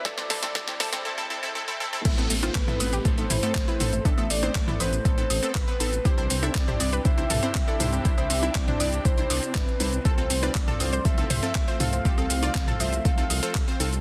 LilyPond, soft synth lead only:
\new Staff \with { instrumentName = "Soft synth lead" } { \time 4/4 \key a \minor \tempo 4 = 120 d''2 r2 | r4 b'4 c''2 | e''8 d''4 c''4. b'4 | c''4 d''4 e''2 |
e''4 d''4 c''4 b'4 | c''4 d''4 e''4. f''8 | f''4. e''8 f''4. r8 | }